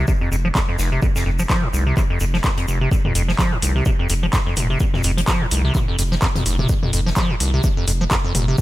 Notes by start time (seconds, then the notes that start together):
0.08 C3, kick, shaker
0.21 F2
0.32 F1 F2, shaker
0.45 F3
0.55 F2, kick, snare, clap, shaker
0.69 F2
0.78 F1, snare, shaker
0.92 C3
1.02 F2, kick, shaker
1.16 F2, snare, shaker
1.26 F1 F2
1.39 F3, shaker
1.50 F3, kick, snare, clap, shaker
1.63 G2
1.73 F1 C2, shaker
1.87 C3
1.97 kick, clap, shaker
2.10 F2
2.20 F1 F2, shaker
2.34 F3, snare
2.44 F2, kick, snare, clap, shaker
2.57 F2, closed hi-hat
2.68 F1, shaker
2.81 C3
2.91 F2, kick, shaker
3.05 F2, mid tom
3.15 F1 F2, open hi-hat, shaker
3.28 F3, snare
3.39 F3, kick, snare, clap, shaker
3.52 G2
3.62 F1 C2, open hi-hat, shaker
3.76 C3
3.86 C3, kick, shaker
3.99 F2
4.09 F1 F2, open hi-hat, shaker
4.23 F3
4.33 F2, kick, snare, clap, shaker
4.46 F2
4.57 F1, open hi-hat, mid tom, shaker
4.70 C3
4.80 F2, kick, shaker
4.94 F2, snare, mid tom
5.03 F1 F2, open hi-hat, shaker
5.17 F3, closed hi-hat
5.28 F3, kick, snare, clap, shaker
5.41 G2
5.51 F1 C2, open hi-hat, shaker
5.65 C3
5.75 kick, clap, mid tom, shaker
5.88 F2
5.99 F1 F2, open hi-hat, shaker
6.12 F3, snare
6.22 F2, kick, snare, clap, shaker
6.36 F2, closed hi-hat, mid tom
6.46 F1, open hi-hat, shaker
6.59 C3, mid tom
6.69 F2, kick, shaker
6.83 F2, mid tom
6.93 F1 F2, open hi-hat, shaker
7.06 F3, snare
7.16 F3, kick, snare, clap, shaker
7.30 G2
7.40 F1 C2, open hi-hat, shaker
7.54 C3
7.64 kick, shaker
7.77 F2
7.88 F1 F2, open hi-hat, shaker
8.01 F3
8.10 F2, kick, snare, clap, shaker
8.24 F2
8.35 F1, open hi-hat, mid tom, shaker
8.48 C3
8.58 kick, shaker